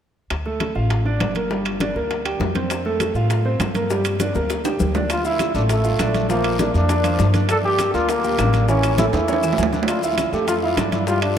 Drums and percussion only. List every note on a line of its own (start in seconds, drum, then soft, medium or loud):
0.30 high bongo medium
0.30 high conga soft
0.30 high timbale medium
0.30 claves medium
0.46 high conga soft
0.60 high bongo soft
0.60 high conga medium
0.60 high timbale medium
0.60 claves medium
0.75 high conga soft
0.90 high bongo medium
0.90 high conga soft
0.90 high timbale medium
1.06 high conga soft
1.20 high bongo medium
1.20 low bongo medium
1.20 high conga medium
1.20 high timbale medium
1.20 claves medium
1.35 high conga medium
1.35 high timbale medium
1.50 high bongo medium
1.50 high conga soft
1.65 high bongo soft
1.65 high conga soft
1.65 high timbale medium
1.65 claves medium
1.80 high bongo soft
1.80 high conga medium
1.80 high timbale medium
1.96 high bongo soft
2.11 high bongo medium
2.11 high conga soft
2.11 high timbale medium
2.25 high bongo soft
2.25 high conga soft
2.25 high timbale medium
2.25 claves medium
2.40 high bongo medium
2.40 low bongo medium
2.40 high conga medium
2.40 low timbale medium
2.55 high conga medium
2.55 high timbale medium
2.70 high bongo medium
2.70 high conga soft
2.70 high timbale medium
2.70 claves medium
2.70 maracas medium
2.85 high conga soft
3.00 high bongo soft
3.00 high conga soft
3.00 high timbale medium
3.00 claves medium
3.00 maracas medium
3.15 high conga soft
3.15 maracas soft
3.30 high bongo medium
3.30 high conga soft
3.30 high timbale medium
3.30 maracas medium
3.45 high conga soft
3.60 high bongo medium
3.60 low bongo medium
3.60 high conga medium
3.60 high timbale medium
3.60 low timbale medium
3.60 claves medium
3.60 maracas medium
3.75 high conga medium
3.75 high timbale medium
3.75 maracas soft
3.90 high bongo medium
3.90 high conga soft
3.90 maracas medium
4.05 high bongo soft
4.05 high conga soft
4.05 high timbale medium
4.05 claves medium
4.05 maracas soft
4.20 high bongo soft
4.20 high conga medium
4.20 high timbale medium
4.20 maracas medium
4.35 high bongo medium
4.35 maracas soft
4.50 high bongo medium
4.50 high conga soft
4.50 high timbale medium
4.50 maracas medium
4.65 low bongo medium
4.65 high conga soft
4.65 high timbale medium
4.65 claves medium
4.65 maracas medium
4.80 low bongo medium
4.80 high conga medium
4.80 maracas medium
4.95 low bongo medium
4.95 high conga medium
4.95 low timbale medium
4.95 maracas soft
5.10 high bongo medium
5.10 high conga soft
5.10 high timbale medium
5.10 long guiro medium
5.10 claves medium
5.10 maracas medium
5.25 high conga soft
5.25 maracas medium
5.39 high bongo soft
5.39 high conga medium
5.39 high timbale medium
5.39 short guiro medium
5.39 claves medium
5.39 maracas medium
5.55 high conga soft
5.55 short guiro medium
5.55 maracas soft
5.69 high bongo medium
5.69 high conga soft
5.69 high timbale medium
5.69 long guiro medium
5.69 maracas medium
5.84 high conga soft
5.84 maracas medium
5.99 high bongo medium
5.99 low bongo medium
5.99 high conga medium
5.99 high timbale medium
5.99 short guiro medium
5.99 claves medium
5.99 maracas medium
6.14 high conga medium
6.14 high timbale medium
6.14 short guiro medium
6.14 maracas soft
6.30 high bongo medium
6.30 long guiro medium
6.30 maracas medium
6.44 high bongo soft
6.44 high conga soft
6.44 high timbale medium
6.44 claves medium
6.59 high bongo medium
6.59 high conga medium
6.59 high timbale medium
6.59 short guiro medium
6.59 maracas medium
6.74 high bongo soft
6.74 short guiro medium
6.74 maracas soft
6.89 high bongo medium
6.89 high conga soft
6.89 high timbale medium
6.89 long guiro medium
6.89 maracas medium
7.04 high bongo soft
7.04 high conga soft
7.04 high timbale medium
7.04 claves medium
7.04 maracas medium
7.19 high bongo medium
7.19 low bongo medium
7.19 high conga medium
7.19 short guiro medium
7.19 maracas medium
7.34 high conga medium
7.34 high timbale medium
7.34 short guiro medium
7.34 maracas soft
7.49 high bongo medium
7.49 high conga soft
7.49 high timbale medium
7.49 long guiro medium
7.49 claves medium
7.49 maracas medium
7.64 high conga soft
7.79 high bongo medium
7.79 high conga medium
7.79 high timbale medium
7.79 short guiro medium
7.79 claves medium
7.79 maracas medium
7.94 high conga soft
7.94 short guiro medium
7.94 maracas soft
8.09 high bongo medium
8.09 high conga soft
8.09 high timbale medium
8.09 long guiro medium
8.09 maracas medium
8.24 high conga soft
8.24 maracas medium
8.38 high bongo medium
8.38 low bongo medium
8.38 high conga medium
8.38 high timbale medium
8.38 low timbale medium
8.38 short guiro medium
8.38 claves medium
8.38 maracas medium
8.53 high conga medium
8.53 high timbale medium
8.53 short guiro medium
8.53 maracas soft
8.68 high bongo medium
8.68 high conga soft
8.68 long guiro medium
8.68 maracas medium
8.83 high bongo soft
8.83 high conga soft
8.83 high timbale medium
8.83 claves medium
8.83 maracas soft
8.98 high bongo medium
8.98 high conga medium
8.98 high timbale medium
8.98 short guiro medium
8.98 maracas medium
9.13 high bongo soft
9.13 high timbale medium
9.13 short guiro medium
9.13 maracas soft
9.28 high bongo medium
9.28 high conga soft
9.28 long guiro medium
9.28 maracas medium
9.33 high timbale medium
9.43 high bongo soft
9.43 high conga soft
9.43 claves medium
9.43 maracas medium
9.53 low timbale medium
9.58 high bongo medium
9.58 low bongo medium
9.58 high conga medium
9.58 short guiro medium
9.58 maracas medium
9.63 low timbale medium
9.73 high conga medium
9.73 low timbale medium
9.73 short guiro medium
9.73 maracas soft
9.83 low timbale medium
9.88 high bongo medium
9.88 high conga soft
9.88 high timbale medium
9.88 long guiro medium
9.88 claves medium
9.88 maracas medium
10.03 high conga soft
10.03 maracas medium
10.18 high bongo soft
10.18 high conga medium
10.18 high timbale medium
10.18 short guiro medium
10.18 claves medium
10.18 maracas medium
10.33 high conga soft
10.33 short guiro medium
10.33 maracas soft
10.47 high bongo medium
10.47 high conga soft
10.47 high timbale medium
10.47 long guiro medium
10.47 maracas medium
10.63 high conga soft
10.77 high bongo medium
10.77 low bongo medium
10.77 high conga medium
10.77 high timbale medium
10.77 low timbale medium
10.77 short guiro medium
10.77 claves medium
10.77 maracas medium
10.92 high conga medium
10.92 high timbale medium
10.92 short guiro medium
10.92 maracas soft
11.07 high bongo medium
11.07 high conga soft
11.07 long guiro medium
11.07 maracas medium
11.22 high bongo soft
11.22 high conga soft
11.22 high timbale medium
11.22 claves medium